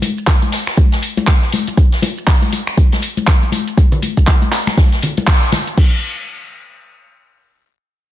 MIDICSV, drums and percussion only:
0, 0, Header, 1, 2, 480
1, 0, Start_track
1, 0, Tempo, 500000
1, 1704, Time_signature, 4, 2, 24, 8
1, 7790, End_track
2, 0, Start_track
2, 0, Title_t, "Drums"
2, 19, Note_on_c, 9, 63, 83
2, 23, Note_on_c, 9, 46, 102
2, 27, Note_on_c, 9, 42, 73
2, 115, Note_off_c, 9, 63, 0
2, 119, Note_off_c, 9, 46, 0
2, 123, Note_off_c, 9, 42, 0
2, 170, Note_on_c, 9, 82, 71
2, 260, Note_on_c, 9, 62, 73
2, 263, Note_on_c, 9, 36, 116
2, 263, Note_on_c, 9, 39, 117
2, 263, Note_on_c, 9, 42, 78
2, 264, Note_off_c, 9, 42, 0
2, 264, Note_on_c, 9, 42, 89
2, 266, Note_off_c, 9, 82, 0
2, 267, Note_on_c, 9, 82, 58
2, 269, Note_on_c, 9, 38, 117
2, 356, Note_off_c, 9, 62, 0
2, 359, Note_off_c, 9, 36, 0
2, 359, Note_off_c, 9, 39, 0
2, 360, Note_off_c, 9, 42, 0
2, 363, Note_off_c, 9, 82, 0
2, 365, Note_off_c, 9, 38, 0
2, 407, Note_on_c, 9, 42, 38
2, 409, Note_on_c, 9, 63, 70
2, 411, Note_on_c, 9, 82, 37
2, 498, Note_on_c, 9, 38, 59
2, 503, Note_off_c, 9, 42, 0
2, 504, Note_on_c, 9, 46, 105
2, 505, Note_off_c, 9, 63, 0
2, 507, Note_off_c, 9, 82, 0
2, 507, Note_on_c, 9, 42, 69
2, 594, Note_off_c, 9, 38, 0
2, 600, Note_off_c, 9, 46, 0
2, 603, Note_off_c, 9, 42, 0
2, 646, Note_on_c, 9, 26, 68
2, 646, Note_on_c, 9, 38, 53
2, 651, Note_on_c, 9, 82, 68
2, 741, Note_on_c, 9, 62, 50
2, 742, Note_off_c, 9, 26, 0
2, 742, Note_off_c, 9, 38, 0
2, 743, Note_on_c, 9, 36, 115
2, 744, Note_on_c, 9, 42, 76
2, 747, Note_off_c, 9, 82, 0
2, 748, Note_on_c, 9, 82, 56
2, 749, Note_on_c, 9, 63, 81
2, 837, Note_off_c, 9, 62, 0
2, 839, Note_off_c, 9, 36, 0
2, 840, Note_off_c, 9, 42, 0
2, 844, Note_off_c, 9, 82, 0
2, 845, Note_off_c, 9, 63, 0
2, 886, Note_on_c, 9, 38, 53
2, 886, Note_on_c, 9, 42, 55
2, 890, Note_on_c, 9, 82, 36
2, 982, Note_off_c, 9, 38, 0
2, 982, Note_off_c, 9, 42, 0
2, 984, Note_on_c, 9, 42, 58
2, 984, Note_on_c, 9, 46, 106
2, 986, Note_off_c, 9, 82, 0
2, 1080, Note_off_c, 9, 42, 0
2, 1080, Note_off_c, 9, 46, 0
2, 1126, Note_on_c, 9, 62, 88
2, 1127, Note_on_c, 9, 42, 37
2, 1129, Note_on_c, 9, 63, 71
2, 1130, Note_off_c, 9, 42, 0
2, 1130, Note_on_c, 9, 42, 39
2, 1131, Note_on_c, 9, 82, 69
2, 1222, Note_off_c, 9, 62, 0
2, 1223, Note_on_c, 9, 36, 112
2, 1223, Note_on_c, 9, 38, 119
2, 1224, Note_off_c, 9, 42, 0
2, 1224, Note_on_c, 9, 26, 83
2, 1224, Note_on_c, 9, 39, 113
2, 1224, Note_on_c, 9, 42, 80
2, 1225, Note_off_c, 9, 42, 0
2, 1225, Note_off_c, 9, 63, 0
2, 1225, Note_on_c, 9, 42, 83
2, 1227, Note_off_c, 9, 82, 0
2, 1228, Note_on_c, 9, 82, 58
2, 1319, Note_off_c, 9, 36, 0
2, 1319, Note_off_c, 9, 38, 0
2, 1320, Note_off_c, 9, 26, 0
2, 1320, Note_off_c, 9, 39, 0
2, 1321, Note_off_c, 9, 42, 0
2, 1324, Note_off_c, 9, 82, 0
2, 1363, Note_on_c, 9, 38, 45
2, 1371, Note_on_c, 9, 82, 35
2, 1459, Note_off_c, 9, 38, 0
2, 1464, Note_on_c, 9, 42, 69
2, 1464, Note_on_c, 9, 46, 106
2, 1467, Note_off_c, 9, 82, 0
2, 1473, Note_on_c, 9, 63, 92
2, 1560, Note_off_c, 9, 42, 0
2, 1560, Note_off_c, 9, 46, 0
2, 1569, Note_off_c, 9, 63, 0
2, 1607, Note_on_c, 9, 42, 53
2, 1611, Note_on_c, 9, 82, 67
2, 1612, Note_on_c, 9, 62, 53
2, 1702, Note_off_c, 9, 42, 0
2, 1702, Note_on_c, 9, 42, 86
2, 1703, Note_on_c, 9, 36, 120
2, 1704, Note_off_c, 9, 42, 0
2, 1704, Note_on_c, 9, 42, 81
2, 1707, Note_off_c, 9, 82, 0
2, 1708, Note_off_c, 9, 62, 0
2, 1709, Note_on_c, 9, 82, 60
2, 1799, Note_off_c, 9, 36, 0
2, 1800, Note_off_c, 9, 42, 0
2, 1805, Note_off_c, 9, 82, 0
2, 1847, Note_on_c, 9, 42, 39
2, 1848, Note_on_c, 9, 38, 42
2, 1851, Note_on_c, 9, 82, 37
2, 1942, Note_on_c, 9, 63, 85
2, 1943, Note_off_c, 9, 42, 0
2, 1944, Note_off_c, 9, 38, 0
2, 1944, Note_on_c, 9, 46, 107
2, 1946, Note_on_c, 9, 42, 73
2, 1947, Note_off_c, 9, 82, 0
2, 1948, Note_on_c, 9, 62, 92
2, 2038, Note_off_c, 9, 63, 0
2, 2040, Note_off_c, 9, 46, 0
2, 2042, Note_off_c, 9, 42, 0
2, 2044, Note_off_c, 9, 62, 0
2, 2091, Note_on_c, 9, 82, 76
2, 2182, Note_on_c, 9, 46, 80
2, 2184, Note_on_c, 9, 36, 113
2, 2184, Note_on_c, 9, 39, 116
2, 2184, Note_on_c, 9, 42, 81
2, 2187, Note_off_c, 9, 82, 0
2, 2187, Note_on_c, 9, 38, 127
2, 2189, Note_on_c, 9, 82, 61
2, 2278, Note_off_c, 9, 46, 0
2, 2280, Note_off_c, 9, 36, 0
2, 2280, Note_off_c, 9, 39, 0
2, 2280, Note_off_c, 9, 42, 0
2, 2283, Note_off_c, 9, 38, 0
2, 2285, Note_off_c, 9, 82, 0
2, 2322, Note_on_c, 9, 63, 70
2, 2327, Note_on_c, 9, 42, 40
2, 2331, Note_on_c, 9, 82, 36
2, 2418, Note_off_c, 9, 63, 0
2, 2422, Note_off_c, 9, 42, 0
2, 2422, Note_on_c, 9, 42, 63
2, 2424, Note_on_c, 9, 46, 101
2, 2427, Note_off_c, 9, 82, 0
2, 2427, Note_on_c, 9, 62, 53
2, 2518, Note_off_c, 9, 42, 0
2, 2520, Note_off_c, 9, 46, 0
2, 2523, Note_off_c, 9, 62, 0
2, 2567, Note_on_c, 9, 26, 71
2, 2571, Note_on_c, 9, 82, 72
2, 2661, Note_on_c, 9, 42, 92
2, 2661, Note_on_c, 9, 63, 78
2, 2663, Note_off_c, 9, 26, 0
2, 2664, Note_off_c, 9, 42, 0
2, 2664, Note_on_c, 9, 36, 109
2, 2664, Note_on_c, 9, 42, 81
2, 2667, Note_off_c, 9, 82, 0
2, 2668, Note_on_c, 9, 82, 60
2, 2757, Note_off_c, 9, 63, 0
2, 2760, Note_off_c, 9, 36, 0
2, 2760, Note_off_c, 9, 42, 0
2, 2764, Note_off_c, 9, 82, 0
2, 2807, Note_on_c, 9, 42, 54
2, 2808, Note_on_c, 9, 38, 54
2, 2811, Note_on_c, 9, 82, 35
2, 2813, Note_on_c, 9, 62, 78
2, 2897, Note_off_c, 9, 42, 0
2, 2897, Note_on_c, 9, 42, 67
2, 2904, Note_off_c, 9, 38, 0
2, 2904, Note_on_c, 9, 46, 103
2, 2907, Note_off_c, 9, 82, 0
2, 2909, Note_off_c, 9, 62, 0
2, 2993, Note_off_c, 9, 42, 0
2, 3000, Note_off_c, 9, 46, 0
2, 3042, Note_on_c, 9, 42, 44
2, 3045, Note_on_c, 9, 63, 69
2, 3047, Note_off_c, 9, 42, 0
2, 3047, Note_on_c, 9, 42, 36
2, 3051, Note_on_c, 9, 82, 73
2, 3141, Note_off_c, 9, 63, 0
2, 3141, Note_on_c, 9, 38, 115
2, 3143, Note_off_c, 9, 42, 0
2, 3144, Note_on_c, 9, 26, 81
2, 3144, Note_on_c, 9, 36, 118
2, 3144, Note_on_c, 9, 39, 113
2, 3144, Note_on_c, 9, 42, 82
2, 3147, Note_off_c, 9, 82, 0
2, 3148, Note_on_c, 9, 82, 58
2, 3149, Note_off_c, 9, 42, 0
2, 3149, Note_on_c, 9, 42, 82
2, 3237, Note_off_c, 9, 38, 0
2, 3240, Note_off_c, 9, 26, 0
2, 3240, Note_off_c, 9, 36, 0
2, 3240, Note_off_c, 9, 39, 0
2, 3244, Note_off_c, 9, 82, 0
2, 3245, Note_off_c, 9, 42, 0
2, 3291, Note_on_c, 9, 62, 52
2, 3291, Note_on_c, 9, 82, 37
2, 3380, Note_on_c, 9, 63, 90
2, 3383, Note_on_c, 9, 42, 68
2, 3384, Note_on_c, 9, 46, 105
2, 3387, Note_off_c, 9, 62, 0
2, 3387, Note_off_c, 9, 82, 0
2, 3476, Note_off_c, 9, 63, 0
2, 3479, Note_off_c, 9, 42, 0
2, 3480, Note_off_c, 9, 46, 0
2, 3527, Note_on_c, 9, 42, 52
2, 3531, Note_on_c, 9, 82, 71
2, 3623, Note_off_c, 9, 42, 0
2, 3624, Note_on_c, 9, 36, 118
2, 3625, Note_on_c, 9, 42, 85
2, 3627, Note_off_c, 9, 42, 0
2, 3627, Note_off_c, 9, 82, 0
2, 3627, Note_on_c, 9, 42, 97
2, 3627, Note_on_c, 9, 62, 82
2, 3629, Note_on_c, 9, 82, 57
2, 3720, Note_off_c, 9, 36, 0
2, 3723, Note_off_c, 9, 42, 0
2, 3723, Note_off_c, 9, 62, 0
2, 3725, Note_off_c, 9, 82, 0
2, 3764, Note_on_c, 9, 64, 89
2, 3767, Note_on_c, 9, 42, 40
2, 3771, Note_on_c, 9, 82, 34
2, 3860, Note_off_c, 9, 64, 0
2, 3863, Note_off_c, 9, 42, 0
2, 3863, Note_on_c, 9, 42, 64
2, 3864, Note_on_c, 9, 46, 102
2, 3865, Note_on_c, 9, 63, 85
2, 3867, Note_off_c, 9, 82, 0
2, 3959, Note_off_c, 9, 42, 0
2, 3960, Note_off_c, 9, 46, 0
2, 3961, Note_off_c, 9, 63, 0
2, 4007, Note_on_c, 9, 36, 56
2, 4007, Note_on_c, 9, 42, 39
2, 4011, Note_on_c, 9, 82, 74
2, 4095, Note_on_c, 9, 38, 108
2, 4099, Note_off_c, 9, 42, 0
2, 4099, Note_on_c, 9, 42, 92
2, 4103, Note_off_c, 9, 36, 0
2, 4103, Note_on_c, 9, 39, 122
2, 4104, Note_off_c, 9, 42, 0
2, 4104, Note_on_c, 9, 36, 120
2, 4104, Note_on_c, 9, 42, 82
2, 4107, Note_off_c, 9, 82, 0
2, 4108, Note_on_c, 9, 82, 59
2, 4109, Note_on_c, 9, 62, 58
2, 4191, Note_off_c, 9, 38, 0
2, 4199, Note_off_c, 9, 39, 0
2, 4200, Note_off_c, 9, 36, 0
2, 4200, Note_off_c, 9, 42, 0
2, 4204, Note_off_c, 9, 82, 0
2, 4205, Note_off_c, 9, 62, 0
2, 4242, Note_on_c, 9, 63, 72
2, 4246, Note_on_c, 9, 42, 39
2, 4251, Note_on_c, 9, 82, 36
2, 4338, Note_off_c, 9, 63, 0
2, 4338, Note_on_c, 9, 38, 55
2, 4342, Note_off_c, 9, 42, 0
2, 4344, Note_on_c, 9, 39, 65
2, 4344, Note_on_c, 9, 46, 101
2, 4347, Note_off_c, 9, 82, 0
2, 4347, Note_on_c, 9, 42, 75
2, 4434, Note_off_c, 9, 38, 0
2, 4440, Note_off_c, 9, 39, 0
2, 4440, Note_off_c, 9, 46, 0
2, 4443, Note_off_c, 9, 42, 0
2, 4485, Note_on_c, 9, 62, 91
2, 4487, Note_on_c, 9, 26, 64
2, 4487, Note_on_c, 9, 42, 37
2, 4491, Note_on_c, 9, 38, 54
2, 4491, Note_on_c, 9, 82, 73
2, 4581, Note_off_c, 9, 62, 0
2, 4583, Note_off_c, 9, 26, 0
2, 4583, Note_off_c, 9, 42, 0
2, 4584, Note_off_c, 9, 38, 0
2, 4584, Note_on_c, 9, 36, 117
2, 4584, Note_on_c, 9, 38, 106
2, 4584, Note_on_c, 9, 42, 84
2, 4587, Note_off_c, 9, 82, 0
2, 4588, Note_on_c, 9, 82, 60
2, 4590, Note_on_c, 9, 63, 83
2, 4591, Note_on_c, 9, 46, 68
2, 4680, Note_off_c, 9, 36, 0
2, 4680, Note_off_c, 9, 38, 0
2, 4680, Note_off_c, 9, 42, 0
2, 4684, Note_off_c, 9, 82, 0
2, 4686, Note_off_c, 9, 63, 0
2, 4687, Note_off_c, 9, 46, 0
2, 4727, Note_on_c, 9, 42, 58
2, 4730, Note_on_c, 9, 38, 49
2, 4731, Note_on_c, 9, 82, 36
2, 4823, Note_off_c, 9, 42, 0
2, 4824, Note_on_c, 9, 46, 105
2, 4826, Note_off_c, 9, 38, 0
2, 4827, Note_off_c, 9, 82, 0
2, 4827, Note_on_c, 9, 42, 68
2, 4830, Note_on_c, 9, 64, 83
2, 4920, Note_off_c, 9, 46, 0
2, 4923, Note_off_c, 9, 42, 0
2, 4926, Note_off_c, 9, 64, 0
2, 4967, Note_on_c, 9, 42, 40
2, 4970, Note_on_c, 9, 63, 64
2, 4971, Note_on_c, 9, 62, 60
2, 4971, Note_on_c, 9, 82, 70
2, 5063, Note_off_c, 9, 42, 0
2, 5064, Note_on_c, 9, 26, 75
2, 5064, Note_on_c, 9, 36, 115
2, 5064, Note_on_c, 9, 39, 115
2, 5064, Note_on_c, 9, 42, 82
2, 5064, Note_on_c, 9, 46, 72
2, 5066, Note_off_c, 9, 63, 0
2, 5066, Note_on_c, 9, 38, 98
2, 5067, Note_off_c, 9, 62, 0
2, 5067, Note_off_c, 9, 82, 0
2, 5068, Note_on_c, 9, 82, 56
2, 5160, Note_off_c, 9, 26, 0
2, 5160, Note_off_c, 9, 36, 0
2, 5160, Note_off_c, 9, 39, 0
2, 5160, Note_off_c, 9, 42, 0
2, 5160, Note_off_c, 9, 46, 0
2, 5162, Note_off_c, 9, 38, 0
2, 5164, Note_off_c, 9, 82, 0
2, 5207, Note_on_c, 9, 42, 41
2, 5211, Note_on_c, 9, 82, 37
2, 5300, Note_on_c, 9, 38, 104
2, 5301, Note_on_c, 9, 64, 97
2, 5303, Note_off_c, 9, 42, 0
2, 5303, Note_on_c, 9, 62, 89
2, 5303, Note_on_c, 9, 63, 87
2, 5304, Note_on_c, 9, 46, 109
2, 5307, Note_off_c, 9, 82, 0
2, 5308, Note_on_c, 9, 42, 86
2, 5396, Note_off_c, 9, 38, 0
2, 5397, Note_off_c, 9, 64, 0
2, 5399, Note_off_c, 9, 62, 0
2, 5399, Note_off_c, 9, 63, 0
2, 5400, Note_off_c, 9, 46, 0
2, 5404, Note_off_c, 9, 42, 0
2, 5447, Note_on_c, 9, 42, 55
2, 5451, Note_on_c, 9, 82, 72
2, 5543, Note_off_c, 9, 42, 0
2, 5544, Note_on_c, 9, 36, 114
2, 5544, Note_on_c, 9, 49, 88
2, 5547, Note_off_c, 9, 82, 0
2, 5640, Note_off_c, 9, 36, 0
2, 5640, Note_off_c, 9, 49, 0
2, 7790, End_track
0, 0, End_of_file